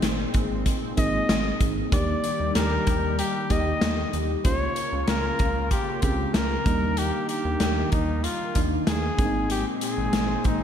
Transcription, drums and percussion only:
0.02 snare medium
0.02 closed hi-hat medium
0.34 kick medium
0.34 closed hi-hat medium
0.66 kick medium
0.66 closed hi-hat medium
0.97 kick medium
0.97 closed hi-hat medium
1.29 snare loud
1.29 closed hi-hat medium
1.60 kick medium
1.60 closed hi-hat medium
1.92 kick loud
1.92 closed hi-hat medium
2.24 closed hi-hat medium
2.55 snare medium
2.55 closed hi-hat medium
2.87 kick medium
2.87 closed hi-hat medium
3.19 closed hi-hat medium
3.50 kick medium
3.50 closed hi-hat medium
3.81 snare loud
3.81 closed hi-hat medium
4.13 closed hi-hat medium
4.45 kick loud
4.45 closed hi-hat medium
4.76 closed hi-hat medium
5.08 snare medium
5.08 closed hi-hat medium
5.39 kick medium
5.39 closed hi-hat medium
5.71 kick medium
5.71 closed hi-hat medium
6.02 kick medium
6.02 closed hi-hat medium
6.34 snare loud
6.34 closed hi-hat medium
6.66 kick medium
6.66 closed hi-hat medium
6.97 closed hi-hat medium
7.29 closed hi-hat medium
7.60 snare medium
7.60 closed hi-hat medium
7.92 kick medium
7.92 closed hi-hat medium
8.24 closed hi-hat medium
8.55 kick medium
8.55 closed hi-hat medium
8.87 snare loud
8.87 closed hi-hat medium
9.18 kick loud
9.18 closed hi-hat medium
9.50 closed hi-hat medium
9.81 closed hi-hat medium
10.13 snare medium
10.13 closed hi-hat medium
10.44 kick medium
10.44 closed hi-hat medium

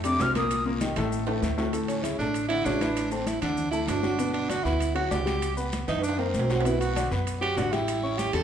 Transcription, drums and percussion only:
0.04 high conga soft
0.04 high timbale medium
0.04 maracas medium
0.19 high conga medium
0.19 low timbale medium
0.19 short guiro medium
0.19 maracas medium
0.35 high conga medium
0.35 high timbale medium
0.35 short guiro medium
0.35 maracas soft
0.50 high conga soft
0.50 high timbale medium
0.50 long guiro medium
0.50 maracas medium
0.66 high conga soft
0.81 high conga loud
0.81 high timbale medium
0.81 low timbale medium
0.81 short guiro medium
0.81 maracas medium
0.96 high conga soft
0.96 low conga medium
0.96 high timbale loud
0.96 short guiro medium
0.96 maracas soft
1.11 high conga soft
1.11 long guiro medium
1.11 maracas medium
1.27 high conga soft
1.27 high timbale loud
1.42 high conga medium
1.42 high timbale medium
1.42 short guiro medium
1.42 maracas medium
1.58 low timbale medium
1.58 short guiro medium
1.58 maracas soft
1.73 high timbale medium
1.73 long guiro medium
1.73 maracas medium
1.88 high conga soft
1.88 high timbale medium
1.88 maracas medium
2.04 high conga medium
2.04 high timbale medium
2.04 low timbale medium
2.04 short guiro medium
2.04 maracas medium
2.19 high conga soft
2.19 short guiro medium
2.19 maracas soft
2.34 high conga soft
2.34 high timbale medium
2.34 long guiro medium
2.34 maracas medium
2.50 high conga soft
2.50 high timbale medium
2.66 high conga medium
2.66 low timbale medium
2.66 short guiro medium
2.66 maracas medium
2.81 high conga medium
2.81 high timbale medium
2.81 short guiro medium
2.81 maracas soft
2.96 high conga soft
2.96 high timbale medium
2.96 long guiro medium
2.96 maracas medium
3.11 high conga soft
3.11 maracas medium
3.27 high conga medium
3.27 high timbale medium
3.27 low timbale medium
3.27 short guiro medium
3.27 maracas medium
3.42 high conga soft
3.42 low conga medium
3.42 high timbale loud
3.42 short guiro medium
3.42 maracas soft
3.57 high conga soft
3.57 low conga medium
3.57 long guiro medium
3.57 maracas medium
3.73 maracas medium
3.87 high conga medium
3.87 high timbale medium
3.87 low timbale medium
3.87 short guiro medium
3.87 maracas medium
4.03 high conga medium
4.03 short guiro medium
4.03 maracas soft
4.19 high conga soft
4.19 high timbale medium
4.19 long guiro medium
4.19 maracas medium
4.34 high conga soft
4.34 high timbale medium
4.50 high conga medium
4.50 high timbale medium
4.50 low timbale medium
4.50 short guiro medium
4.50 maracas medium
4.65 high conga soft
4.65 short guiro medium
4.65 maracas soft
4.80 high conga soft
4.80 high timbale medium
4.80 long guiro medium
4.80 maracas medium
4.96 high conga soft
4.96 high timbale medium
5.11 high conga medium
5.11 low timbale medium
5.11 short guiro medium
5.11 maracas medium
5.27 high conga medium
5.27 high timbale medium
5.27 short guiro medium
5.27 maracas soft
5.42 high timbale medium
5.42 long guiro medium
5.42 maracas medium
5.57 high conga soft
5.57 maracas medium
5.72 high conga medium
5.72 high timbale medium
5.72 low timbale medium
5.72 short guiro medium
5.72 maracas medium
5.88 high conga soft
5.88 low conga medium
5.88 high timbale medium
5.88 short guiro medium
5.88 maracas soft
5.98 high timbale medium
6.04 high conga soft
6.04 long guiro medium
6.04 maracas medium
6.09 high timbale loud
6.19 high conga soft
6.19 high timbale medium
6.34 high conga medium
6.34 short guiro medium
6.34 maracas medium
6.39 low timbale medium
6.50 low timbale medium
6.50 short guiro medium
6.50 maracas soft
6.61 low timbale medium
6.65 high timbale medium
6.65 long guiro medium
6.65 maracas medium
6.81 high conga soft
6.81 high timbale medium
6.81 maracas medium
6.96 high conga medium
6.96 high timbale medium
6.96 low timbale medium
6.96 short guiro medium
6.96 maracas medium
7.12 high conga soft
7.12 short guiro medium
7.12 maracas soft
7.27 high conga soft
7.27 high timbale medium
7.27 long guiro medium
7.27 maracas medium
7.43 high conga soft
7.43 high timbale medium
7.57 high conga medium
7.57 low timbale medium
7.57 short guiro medium
7.57 maracas medium
7.73 high conga medium
7.73 high timbale medium
7.73 short guiro medium
7.73 maracas soft
7.87 high conga soft
7.87 high timbale medium
7.87 long guiro medium
7.87 maracas medium
8.04 high conga soft
8.18 high conga loud
8.18 high timbale medium
8.18 low timbale medium
8.18 short guiro medium
8.18 maracas medium
8.33 high conga soft
8.33 low conga medium
8.33 high timbale loud
8.33 short guiro medium
8.33 maracas soft

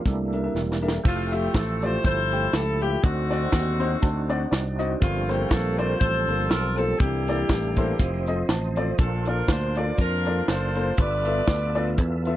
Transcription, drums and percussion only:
0.05 kick medium
0.05 snare soft
0.05 closed hi-hat medium
0.33 closed hi-hat medium
0.56 snare soft
0.72 snare medium
0.88 snare medium
1.05 kick loud
1.05 crash loud
1.33 closed hi-hat medium
1.54 kick loud
1.54 snare loud
1.54 closed hi-hat medium
1.82 closed hi-hat medium
2.04 kick loud
2.04 snare soft
2.04 closed hi-hat medium
2.31 closed hi-hat medium
2.53 snare loud
2.53 closed hi-hat medium
2.81 closed hi-hat medium
3.03 kick loud
3.03 closed hi-hat loud
3.31 snare soft
3.31 closed hi-hat medium
3.52 kick medium
3.52 snare loud
3.52 closed hi-hat medium
3.81 closed hi-hat medium
4.02 kick loud
4.02 snare soft
4.02 closed hi-hat medium
4.30 closed hi-hat medium
4.53 snare loud
4.53 closed hi-hat medium
4.80 closed hi-hat medium
5.02 kick loud
5.02 closed hi-hat loud
5.29 snare soft
5.29 closed hi-hat medium
5.51 kick loud
5.51 snare loud
5.51 closed hi-hat medium
5.79 closed hi-hat medium
6.00 kick loud
6.00 closed hi-hat medium
6.28 closed hi-hat medium
6.51 snare loud
6.51 closed hi-hat loud
6.78 closed hi-hat medium
7.00 kick loud
7.00 closed hi-hat loud
7.27 snare soft
7.27 closed hi-hat medium
7.49 kick medium
7.49 snare loud
7.49 closed hi-hat medium
7.76 kick medium
7.76 closed hi-hat medium
7.99 kick loud
7.99 snare soft
7.99 closed hi-hat medium
8.26 closed hi-hat medium
8.49 snare loud
8.49 closed hi-hat medium
8.76 closed hi-hat medium
8.98 kick loud
8.98 closed hi-hat medium
9.25 closed hi-hat medium
9.48 kick medium
9.48 snare loud
9.48 closed hi-hat medium
9.76 closed hi-hat medium
9.97 kick loud
9.97 closed hi-hat medium
10.26 closed hi-hat medium
10.48 snare loud
10.48 closed hi-hat medium
10.75 closed hi-hat medium
10.97 kick loud
10.97 closed hi-hat loud
11.25 closed hi-hat medium
11.48 kick loud
11.48 snare loud
11.48 closed hi-hat medium
11.75 closed hi-hat medium
11.98 kick loud
11.98 closed hi-hat medium
12.25 closed hi-hat medium

